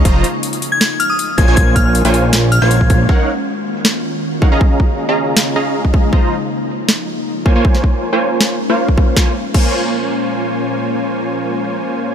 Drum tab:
CC |----------------|----------------|----------------|----------------|
HH |x-x-xxx-x-x-x-x-|x-x-xxx-x-x-x-x-|----------------|----------------|
SD |--------o-------|--------o-------|--------o-------|--------o-------|
BD |o-------------o-|o-o----------oo-|o-------------o-|o-o----------oo-|

CC |----------------|----------------|----x-----------|----------------|
HH |----------------|----------------|----------------|----------------|
SD |--------o-------|-o------o-------|o---------------|----------------|
BD |o-------------o-|o-o----------oo-|o---o-----------|----------------|